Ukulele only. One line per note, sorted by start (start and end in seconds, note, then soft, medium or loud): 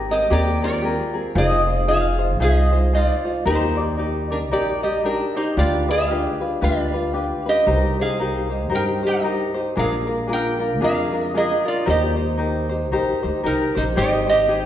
0.09 0.29 C4 soft
0.09 0.30 G#4 soft
0.09 0.30 A#4 soft
0.30 0.62 C4 medium
0.30 0.61 G4 medium
0.30 0.61 G#4 medium
0.30 0.60 A#4 medium
0.62 0.82 C4 soft
0.62 0.83 G#4 soft
0.62 0.81 A#4 medium
0.82 1.14 C4 medium
0.82 1.13 G4 medium
0.82 1.13 G#4 medium
0.82 1.12 A#4 medium
1.13 1.35 C4 soft
1.13 1.34 G#4 soft
1.13 1.35 A#4 soft
1.35 1.67 D#4 medium
1.35 1.67 F4 medium
1.35 1.67 G#4 medium
1.35 1.66 C5 medium
1.67 1.87 D#4 soft
1.67 1.87 F4 soft
1.67 1.88 C5 medium
1.87 2.19 D#4 medium
1.87 2.18 F4 medium
1.87 2.19 G#4 medium
1.87 2.18 C5 medium
2.19 2.39 D#4 soft
2.19 2.39 F4 soft
2.19 2.40 C5 medium
2.40 2.72 D#4 medium
2.40 2.72 F4 medium
2.40 2.72 G#4 medium
2.40 2.71 C5 medium
2.72 2.93 D#4 soft
2.72 2.94 F4 soft
2.72 2.93 C5 medium
2.93 3.25 D#4 medium
2.93 3.25 F4 medium
2.93 3.25 G#4 medium
2.93 3.24 C5 medium
3.25 3.44 D#4 soft
3.25 3.46 F4 soft
3.25 3.46 C5 soft
3.45 3.77 D#4 medium
3.45 3.76 G4 medium
3.45 3.77 A#4 medium
3.45 3.76 D5 medium
3.77 3.97 D#4 soft
3.77 3.97 G4 soft
3.77 3.98 D5 medium
3.97 4.30 D#4 medium
3.97 4.30 G4 medium
3.97 4.29 A#4 medium
3.97 4.29 D5 medium
4.30 4.51 D#4 soft
4.30 4.51 G4 soft
4.30 4.51 D5 soft
4.51 4.83 D#4 medium
4.51 4.83 G4 medium
4.51 4.83 A#4 medium
4.51 4.82 D5 medium
4.83 5.03 D#4 soft
4.83 5.04 G4 soft
4.83 5.04 D5 medium
5.04 5.36 D#4 medium
5.04 5.36 G4 medium
5.04 5.35 A#4 medium
5.04 5.35 D5 medium
5.36 5.57 D#4 soft
5.36 5.56 G4 soft
5.36 5.57 D5 soft
5.57 5.88 D4 medium
5.57 5.88 F4 medium
5.57 5.88 G4 medium
5.57 5.88 B4 medium
5.89 6.09 D4 soft
5.89 6.10 F4 soft
5.89 6.10 B4 medium
6.10 6.41 D4 medium
6.10 6.40 F4 medium
6.10 6.41 G4 medium
6.10 6.40 B4 medium
6.41 6.61 D4 soft
6.41 6.61 F4 soft
6.41 6.62 B4 soft
6.61 6.93 D4 medium
6.61 6.94 F4 medium
6.61 6.93 G4 medium
6.61 6.92 B4 medium
6.93 7.13 D4 soft
6.93 7.14 F4 soft
6.93 7.14 B4 medium
7.13 7.46 D4 medium
7.13 7.45 F4 medium
7.13 7.45 G4 medium
7.13 7.45 B4 medium
7.46 7.67 D4 soft
7.46 7.67 F4 soft
7.46 7.67 B4 medium
7.66 7.99 D#4 medium
7.66 7.98 G4 medium
7.66 7.98 A#4 medium
7.66 7.98 C5 medium
7.99 8.19 D#4 soft
7.99 8.20 G4 soft
7.99 8.20 C5 medium
8.19 8.50 D#4 medium
8.19 8.49 G4 medium
8.19 8.51 A#4 medium
8.19 8.48 C5 medium
8.50 8.69 D#4 soft
8.50 8.70 G4 soft
8.50 8.70 C5 soft
8.70 9.03 D#4 medium
8.70 9.03 G4 medium
8.70 9.02 A#4 medium
8.70 9.02 C5 medium
9.03 9.23 D#4 soft
9.03 9.23 G4 soft
9.03 9.24 C5 medium
9.24 9.55 D#4 medium
9.24 9.54 G4 medium
9.24 9.55 A#4 medium
9.24 9.53 C5 medium
9.54 9.76 D#4 soft
9.54 9.76 G4 soft
9.54 9.76 C5 medium
9.76 10.07 D4 medium
9.76 10.06 F4 medium
9.76 10.08 G#4 medium
9.76 10.06 A#4 medium
10.07 10.27 D4 soft
10.07 10.28 F4 soft
10.07 10.28 A#4 medium
10.27 10.60 D4 medium
10.27 10.59 F4 medium
10.27 10.60 G#4 medium
10.27 10.58 A#4 medium
10.59 10.80 D4 soft
10.59 10.80 F4 soft
10.59 10.81 A#4 soft
10.81 11.13 D4 medium
10.81 11.12 F4 medium
10.81 11.13 G#4 medium
10.81 11.11 A#4 medium
11.12 11.34 D4 soft
11.12 11.34 F4 soft
11.12 11.34 A#4 medium
11.34 11.65 D4 medium
11.34 11.64 F4 medium
11.34 11.66 G#4 medium
11.34 11.63 A#4 medium
11.65 11.85 D4 soft
11.65 11.86 F4 soft
11.65 11.84 A#4 soft
11.85 12.16 D#4 medium
11.85 12.16 G4 medium
11.85 12.18 A#4 medium
11.85 12.15 C5 medium
12.16 12.37 D#4 soft
12.16 12.37 G4 soft
12.16 12.38 C5 medium
12.37 12.70 D#4 medium
12.37 12.69 G4 medium
12.37 12.70 A#4 medium
12.37 12.68 C5 medium
12.69 12.91 D#4 soft
12.69 12.92 G4 soft
12.69 12.91 C5 medium
12.92 13.24 D#4 medium
12.92 13.23 G4 medium
12.92 13.23 A#4 medium
12.92 13.22 C5 medium
13.23 13.43 D#4 soft
13.23 13.44 G4 medium
13.23 13.44 C5 medium
13.43 13.76 D#4 medium
13.43 13.75 G4 medium
13.43 13.75 A#4 medium
13.43 13.74 C5 medium
13.75 13.95 D#4 soft
13.75 13.95 G4 medium
13.75 13.96 C5 medium
13.96 14.27 D#4 medium
13.96 14.26 G4 medium
13.96 14.27 G#4 medium
13.96 14.25 C5 medium
14.27 14.47 D#4 soft
14.27 14.48 G4 soft
14.27 14.49 C5 medium
14.48 14.66 D#4 medium
14.48 14.66 G4 medium
14.48 14.66 G#4 medium
14.48 14.66 C5 medium